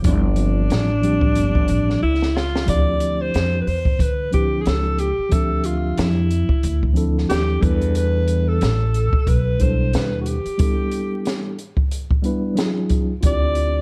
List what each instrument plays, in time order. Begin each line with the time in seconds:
0.02 upright bass G1, tine electric piano F3 G3 C4 D4 E4, kick, closed hi-hat
0.07 alto saxophone D4
0.35 tine electric piano F3 G3 C4 D4 F4, closed hi-hat
0.70 upright bass A1, snare, closed hi-hat
1.01 tine electric piano F3 G3 C4 D4 G4, closed hi-hat
1.21 kick
1.35 upright bass G1, closed hi-hat
1.55 kick
1.68 upright bass A1, closed hi-hat
1.90 snare
2.03 upright bass C#2, alto saxophone E4
2.22 snare
2.36 alto saxophone F4, snare
2.56 snare
2.66 upright bass D2, tine electric piano F3 C4 D4 E4 G4, alto saxophone D5, kick, closed hi-hat
3.00 closed hi-hat
3.21 alto saxophone C5
3.34 upright bass F2, snare, closed hi-hat
3.61 alto saxophone B4
3.67 upright bass E2, alto saxophone C5, open hi-hat
3.85 kick
3.99 upright bass D3, alto saxophone B4, kick, closed hi-hat
4.31 tine electric piano F3 C4 D4 E4 G4, alto saxophone G4, kick, closed hi-hat
4.61 alto saxophone G#4
4.66 upright bass C#2, alto saxophone A4, snare, closed hi-hat
4.99 alto saxophone G4, closed hi-hat
5.18 muted upright bass stroke
5.29 upright bass D2, tine electric piano F3 C4 D4 G4 E5, alto saxophone A4, kick, closed hi-hat
5.64 alto saxophone F4, closed hi-hat
5.98 upright bass F2, alto saxophone E4, snare, closed hi-hat
6.31 closed hi-hat
6.49 muted upright bass stroke, kick
6.63 upright bass D2, closed hi-hat
6.83 kick
6.93 tine electric piano F3 C4 D4 E4, closed hi-hat
6.97 tine electric piano A4
7.18 snare
7.30 upright bass D#2, alto saxophone G4, snare, closed hi-hat
7.60 upright bass E2, tine electric piano G3 B3 D4 E4 A4, alto saxophone B4, kick, closed hi-hat
7.81 closed hi-hat
7.95 alto saxophone B4, closed hi-hat
8.28 closed hi-hat
8.48 alto saxophone A4
8.61 upright bass A1, snare, closed hi-hat
8.94 closed hi-hat
9.13 muted upright bass stroke, kick
9.27 upright bass B1, alto saxophone B4, kick, closed hi-hat
9.58 tine electric piano B2 G3 D4 E4 A4, alto saxophone C5, kick, closed hi-hat
9.93 upright bass D#2, alto saxophone B4, snare, closed hi-hat
10.21 alto saxophone F#4
10.26 alto saxophone G4, closed hi-hat
10.45 muted upright bass stroke, closed hi-hat
10.57 tine electric piano G3 B3 D4 E4 A4, kick, closed hi-hat
10.92 closed hi-hat
11.25 snare, closed hi-hat
11.59 closed hi-hat
11.77 kick
11.91 closed hi-hat
12.11 kick
12.22 tine electric piano G3 B3 D4 E4 B4, closed hi-hat
12.55 tine electric piano F#3 C#4 D#4 F4 G#4, snare, closed hi-hat
12.90 kick, closed hi-hat
13.21 upright bass D2, tine electric piano C4 D4 E4 F4 G4, kick, closed hi-hat
13.26 alto saxophone D5
13.55 closed hi-hat